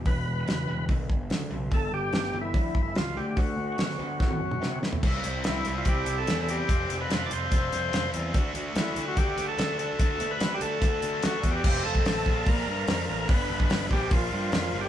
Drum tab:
CC |----------------|----------------|----------------|x---------------|
HH |o---o---o---o---|o---o---o---o---|o---o-----------|--x-x-x-x-x-x-x-|
SD |----o-------o---|----oo------o---|----oo--o---o-o-|----o-------o---|
T1 |----------------|----------------|---------o------|----------------|
T2 |----------------|----------------|-----------o----|----------------|
FT |----------------|----------------|---------------o|----------------|
BD |o-------o-o-----|o-------o-o-----|o-------o-------|o-------o-------|

CC |----------------|----------------|----------------|x---------------|
HH |x-x-x-x-x-x-x-x-|x-x-x-x-x-x-x-x-|x-x-x-x-x-x-x-x-|----o---o---o---|
SD |----o-------o---|----o-------o---|----o-------o---|----o-------o---|
T1 |----------------|----------------|----------------|----------------|
T2 |----------------|----------------|----------------|----------------|
FT |----------------|----------------|----------------|----------------|
BD |o-------o-------|o-------o-------|o-------o-----o-|o--o--o-o-------|

CC |----------------|
HH |o---o---o---o---|
SD |----o-------o---|
T1 |----------------|
T2 |----------------|
FT |----------------|
BD |o--o--o-o-------|